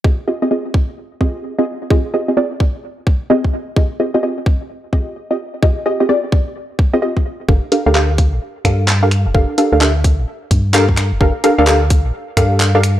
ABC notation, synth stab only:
X:1
M:4/4
L:1/16
Q:"Swing 16ths" 1/4=129
K:Fdor
V:1 name="Synth stab"
[CFGAe] z [CFGAe] [CFGAe] [CFGAe] z4 z [CFGAe]3 [CFGAe] z2 | [CFGAe]2 [CFGAe] [CFGAe] [CFGAd] z6 z [CFGAe] z3 | [CFGAe] z [CFGAe] [CFGAe] [CFGAe] z4 z [CFGAe]3 [CFGAe] z2 | [CFGAe]2 [CFGAe] [CFGAe] [CFGAd] z6 [CFGAe] [CFGAe] z3 |
[DG=ABf] z [DGABf] [DGABf] [DGABf] z4 z [DGABf]3 [DGABf] z2 | [DG=ABf]2 [DGABf] [DGABf] [DGAB=e] z6 z [DGABf] z3 | [DG=ABf] z [DGABf] [DGABf] [DGABf] z4 z [DGABf]3 [DGABf] z2 |]